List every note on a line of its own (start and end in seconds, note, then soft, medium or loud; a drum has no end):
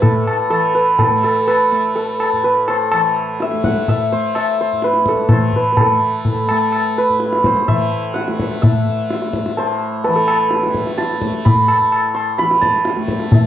0.00 2.33 A2 medium
0.00 0.50 E3 medium
0.00 1.11 A3 medium
0.00 0.50 A4 medium
0.00 0.74 B4 medium
0.00 1.29 E5 medium
0.00 1.13 F#5 medium
0.00 0.87 A5 medium
0.00 0.36 E6 soft
0.00 tabla tin medium
0.00 tabla ge medium
0.27 tabla na medium
0.50 2.92 E3 medium
0.50 0.99 A4 medium
0.50 tabla na medium
0.75 1.47 B4 medium
0.99 1.24 A4 medium
0.99 tabla tin medium
0.99 tabla ge medium
1.11 1.72 A3 medium
1.23 1.95 A4 medium
1.23 tabla na medium
1.47 2.44 B4 medium
1.47 tabla na medium
1.71 3.53 A3 medium
1.71 tabla na medium
1.95 4.88 A4 medium
1.95 tabla tin medium
2.20 tabla na medium
2.33 4.72 A2 medium
2.43 2.74 B4 medium
2.43 tabla tin medium
2.68 4.12 C5 medium
2.68 tabla na medium
2.92 5.32 E3 medium
2.92 tabla na medium
3.16 tabla na medium
3.40 3.89 E5 medium
3.40 tabla te medium
3.52 4.12 A3 medium
3.52 tabla te medium
3.64 5.80 F#5 medium
3.64 tabla ke medium
3.76 tabla te medium
3.88 4.35 E5 medium
3.88 tabla tin medium
3.88 tabla ge medium
4.12 5.92 A3 medium
4.12 4.60 C5 medium
4.35 6.65 E5 medium
4.35 tabla na medium
4.61 4.90 C5 medium
4.73 7.09 A2 medium
4.82 5.38 B4 medium
4.82 tabla te medium
4.93 tabla te medium
5.06 5.80 A4 medium
5.06 tabla ke medium
5.17 tabla te medium
5.29 7.67 E3 soft
5.29 5.62 C5 medium
5.29 tabla na medium
5.29 tabla ge medium
5.53 5.72 B4 medium
5.53 tabla ge soft
5.72 6.98 B4 medium
5.77 8.73 A4 medium
5.77 tabla tin loud
5.77 tabla ge medium
5.92 6.50 A3 medium
6.25 tabla tin medium
6.25 tabla ge medium
6.49 8.28 A3 medium
6.49 tabla na medium
6.72 tabla na medium
6.98 7.52 B4 medium
7.09 9.46 A2 medium
7.20 tabla te medium
7.33 tabla te medium
7.44 9.58 C5 medium
7.44 tabla ke medium
7.57 tabla te medium
7.67 10.07 E3 medium
7.67 8.62 E5 medium
7.67 tabla tin medium
7.67 tabla ge medium
8.14 10.29 F#5 medium
8.14 tabla te medium
8.28 8.89 A3 medium
8.28 tabla te medium
8.40 tabla ke medium
8.51 tabla te medium
8.62 10.92 E5 medium
8.62 tabla tin medium
8.62 tabla ge medium
8.89 10.66 A3 medium
9.11 tabla te medium
9.22 tabla te medium
9.33 tabla ke medium
9.46 11.81 A2 medium
9.46 tabla te medium
9.57 10.10 C5 medium
9.57 tabla tin medium
10.04 12.39 E3 medium
10.04 12.20 B4 medium
10.04 tabla tin medium
10.16 13.08 A4 medium
10.28 tabla na medium
10.51 tabla te medium
10.63 11.22 A3 medium
10.63 tabla te medium
10.74 tabla ke medium
10.87 tabla te soft
10.98 12.61 A5 medium
10.98 tabla te medium
11.10 tabla te medium
11.22 12.97 A3 medium
11.22 tabla ke medium
11.34 tabla te medium
11.45 12.20 B5 medium
11.45 tabla tin medium
11.45 tabla ge medium
11.68 tabla na medium
11.82 13.47 A2 medium
11.92 tabla na medium
12.14 12.44 C6 medium
12.14 tabla na medium
12.38 13.35 E3 medium
12.38 13.47 B5 loud
12.38 tabla te medium
12.51 tabla te medium
12.61 13.47 A5 medium
12.61 tabla ke medium
12.73 tabla te soft
12.85 tabla te medium
12.97 13.47 A3 medium
12.97 tabla te medium
13.08 tabla ke medium
13.20 tabla te medium
13.32 13.47 E3 medium
13.32 13.47 E5 medium
13.32 tabla tin medium
13.32 tabla ge medium